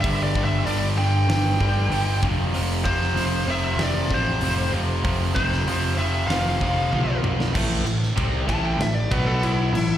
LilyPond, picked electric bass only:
\new Staff \with { instrumentName = "Picked electric bass" } { \clef bass \time 4/4 \key f \lydian \tempo 4 = 96 g,,8 g,,8 g,,8 g,,8 g,,8 g,,8 g,,8 f,,8 | f,,8 f,,8 f,,8 f,,8 f,,8 a,,8 f,,8 f,,8 | f,,8 f,,8 f,,8 f,,8 f,,8 f,,8 b,,4 | a,,8 a,,8 c,8 a,,8 a,,8 b,,4 a,,8 | }